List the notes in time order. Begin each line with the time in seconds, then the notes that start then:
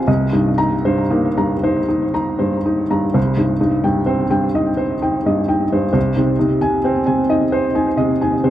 Already playing: C3 F4 G#5
0.07 C2 D#5
0.33 G2 D#4
0.58 D#4 A#5
0.85 G2 C5
1.10 A#3 D#4
1.37 G2 A#5
1.63 D#4 C5
1.88 D#4
2.14 D#4 A#5
2.39 G2 C5
2.66 D#4
2.90 G2 A#5
3.14 C2 C5
3.37 G2 D#4
3.60 G2 D#4
3.84 G2 G5
4.06 C4 C5
4.30 G2 G5
4.55 D#4 D#5
4.77 C5
5.02 D#4 G5
5.26 G2 D#5
5.48 D#4 G5
5.72 G2 C5
5.93 C2 C5
6.16 C3 D#4
6.39 C3 D#4
6.61 C3 G#5
6.84 C4 C5
7.06 C3 G#5
7.30 D#4 D#5
7.52 C5
7.75 D#4 G#5
7.97 C3 D#5
8.21 D#4 G#5
8.44 C3 C5